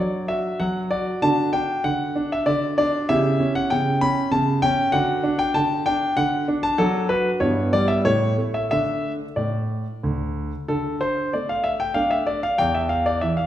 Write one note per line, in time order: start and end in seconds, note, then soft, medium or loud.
0.00 0.28 F#3 soft
0.00 1.19 D4 soft
0.00 0.26 D5 medium
0.28 0.59 F#4 soft
0.28 0.60 E5 medium
0.60 0.90 F#3 soft
0.60 0.78 F#5 medium
0.91 1.21 F#4 soft
0.91 1.19 D5 medium
1.22 1.53 D3 medium
1.22 1.51 D4 soft
1.22 3.05 F#4 soft
1.22 1.51 A5 medium
1.53 1.83 D4 soft
1.53 1.84 G5 medium
1.84 2.15 D3 soft
1.84 2.31 F#5 medium
2.16 2.46 D4 soft
2.32 2.47 E5 medium
2.46 2.77 D3 soft
2.46 2.76 D5 medium
2.78 3.08 D4 soft
2.78 3.06 D5 medium
3.09 3.39 C#3 medium
3.09 4.90 E4 soft
3.09 4.90 G4 soft
3.09 3.52 E5 medium
3.40 3.70 C#4 soft
3.55 3.71 F#5 medium
3.70 4.01 C#3 soft
3.70 3.98 G5 medium
4.01 4.32 C#4 soft
4.01 4.29 B5 medium
4.32 4.62 C#3 medium
4.32 4.60 A5 medium
4.62 4.93 C#4 soft
4.62 4.93 G5 medium
4.92 5.23 D3 medium
4.92 5.22 D4 soft
4.92 6.76 F#4 soft
4.92 5.39 F#5 medium
5.23 5.54 D4 medium
5.39 5.55 G5 medium
5.54 5.86 D3 soft
5.54 5.86 A5 medium
5.86 6.17 D4 soft
5.86 6.14 G5 medium
6.17 6.48 D3 medium
6.17 6.45 F#5 medium
6.48 6.77 D4 soft
6.63 6.79 A5 medium
6.78 7.09 F#3 medium
6.78 7.38 D4 soft
6.78 7.08 F#4 soft
6.78 7.07 A4 medium
7.09 7.41 F#4 soft
7.09 7.28 B4 medium
7.40 7.72 G2 soft
7.40 8.01 B3 soft
7.40 8.01 E4 soft
7.40 7.70 C#5 medium
7.73 8.05 G3 soft
7.73 7.89 D5 medium
7.88 8.05 E5 medium
8.05 8.37 A2 soft
8.05 8.36 A3 soft
8.05 8.67 E4 soft
8.05 8.35 C#5 medium
8.38 8.70 A3 soft
8.54 8.69 E5 medium
8.71 9.18 D3 soft
8.71 9.25 A3 soft
8.71 9.25 D4 soft
8.71 9.11 E5 medium
9.36 9.83 A2 soft
9.36 10.03 D5 soft
10.03 10.50 D2 soft
10.68 11.31 D3 soft
10.68 10.98 A4 medium
11.01 11.33 C5 medium
11.33 11.93 A3 soft
11.33 11.49 D5 soft
11.49 11.65 F5 medium
11.64 11.80 E5 medium
11.80 11.96 G5 medium
11.94 12.41 A3 soft
11.94 12.41 D4 soft
11.94 12.11 F5 medium
12.11 12.27 E5 medium
12.27 12.43 D5 medium
12.43 12.59 F5 medium
12.58 13.20 E2 soft
12.58 12.75 G5 medium
12.75 12.90 E5 medium
12.89 13.06 F5 medium
13.06 13.22 D5 medium
13.21 13.46 E3 soft
13.21 13.37 E5 medium
13.37 13.46 F5 medium